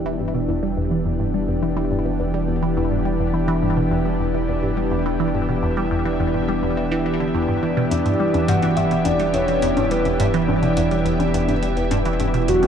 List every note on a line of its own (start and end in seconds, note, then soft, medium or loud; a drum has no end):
0.00 7.89 E1 medium
0.00 12.67 E3 medium
0.00 12.67 B3 medium
0.00 12.67 D4 medium
0.00 12.67 G4 medium
0.00 12.67 E5 medium
0.06 0.19 E3 loud
0.20 0.29 G2 medium
0.34 0.39 B2 medium
0.48 0.54 E2 medium
0.63 0.76 G3 medium
0.77 0.86 E2 medium
0.91 1.00 E3 medium
1.05 1.11 E2 medium
1.20 1.29 G2 medium
1.34 1.39 G3 medium
1.48 1.57 E2 medium
1.63 1.76 E3 medium
1.77 1.90 E3 loud
1.91 2.00 G2 medium
2.05 2.11 B2 medium
2.20 2.25 E2 medium
2.34 2.47 G3 medium
2.48 2.57 E2 medium
2.63 2.72 E3 medium
2.77 2.82 E2 medium
2.91 3.00 G2 medium
3.05 3.11 G3 medium
3.20 3.29 E2 medium
3.34 3.47 E3 medium
3.48 3.62 E3 medium
3.63 3.72 G2 medium
3.77 3.82 B2 medium
3.91 3.97 E2 medium
4.06 4.19 G3 medium
4.20 4.29 E2 medium
4.34 4.43 E3 medium
4.48 4.54 E2 medium
4.63 4.72 G2 medium
4.77 4.82 G3 medium
4.91 5.00 E2 medium
5.06 5.19 E3 medium
5.20 5.33 E3 medium
5.34 5.43 G2 medium
5.49 5.54 B2 medium
5.63 5.68 E2 medium
5.77 5.90 G3 medium
5.91 6.00 E2 medium
6.05 6.14 E3 medium
6.20 6.25 E2 medium
6.34 6.43 G2 medium
6.49 6.54 G3 medium
6.63 6.72 E2 medium
6.77 6.90 E3 medium
6.91 7.05 E3 loud
7.06 7.15 E3 medium
7.20 7.33 D3 medium
7.35 7.48 E2 medium
7.49 7.54 G2 medium
7.63 7.72 E3 medium
7.77 7.82 B2 loud
7.91 12.67 E1 medium
7.91 7.97 E2 medium
7.91 8.50 D5 loud
7.91 closed hi-hat medium
7.91 low bongo soft
8.05 8.14 G2 medium
8.05 closed hi-hat soft
8.20 8.25 G3 medium
8.34 8.43 E2 medium
8.34 closed hi-hat soft
8.34 low bongo medium
8.48 8.57 G2 loud
8.48 8.78 F#5 loud
8.48 closed hi-hat medium
8.62 8.76 E3 medium
8.62 closed hi-hat soft
8.62 low bongo soft
8.77 8.86 G2 medium
8.77 9.07 E5 loud
8.77 closed hi-hat medium
8.91 8.97 B2 medium
8.91 closed hi-hat soft
9.05 9.11 E2 medium
9.05 9.36 D5 loud
9.05 closed hi-hat medium
9.05 low bongo medium
9.20 9.33 G3 medium
9.20 closed hi-hat soft
9.34 9.43 E2 medium
9.34 9.93 C#5 loud
9.34 closed hi-hat medium
9.34 low bongo soft
9.48 9.57 E3 medium
9.48 closed hi-hat soft
9.62 9.68 E2 medium
9.62 closed hi-hat medium
9.77 9.86 G2 medium
9.77 closed hi-hat soft
9.77 low bongo medium
9.91 9.97 G3 medium
9.91 10.50 B4 medium
9.91 closed hi-hat medium
10.05 10.15 E2 medium
10.05 closed hi-hat soft
10.05 low bongo soft
10.20 10.29 G2 loud
10.20 closed hi-hat medium
10.34 10.47 E3 medium
10.34 closed hi-hat soft
10.48 10.57 G2 medium
10.48 11.06 D5 medium
10.48 low bongo medium
10.63 10.68 B2 medium
10.63 closed hi-hat soft
10.77 10.82 E2 medium
10.77 closed hi-hat medium
10.77 low bongo soft
10.91 11.05 G3 medium
10.91 closed hi-hat soft
11.05 11.14 E2 medium
11.05 closed hi-hat medium
11.20 11.29 E3 medium
11.20 closed hi-hat soft
11.20 low bongo medium
11.34 11.39 E2 medium
11.34 closed hi-hat medium
11.48 11.57 G2 medium
11.48 closed hi-hat soft
11.48 low bongo soft
11.63 11.68 G3 medium
11.63 closed hi-hat medium
11.77 11.86 E2 medium
11.77 closed hi-hat soft
11.91 12.00 G2 loud
11.91 closed hi-hat medium
11.91 low bongo medium
12.05 12.19 E3 medium
12.05 closed hi-hat soft
12.20 12.29 G2 medium
12.20 closed hi-hat medium
12.20 low bongo soft
12.34 12.39 B2 medium
12.34 closed hi-hat soft
12.48 12.54 E2 medium
12.48 12.67 F#4 loud
12.48 closed hi-hat medium
12.63 12.67 G3 medium
12.63 closed hi-hat soft
12.63 low bongo medium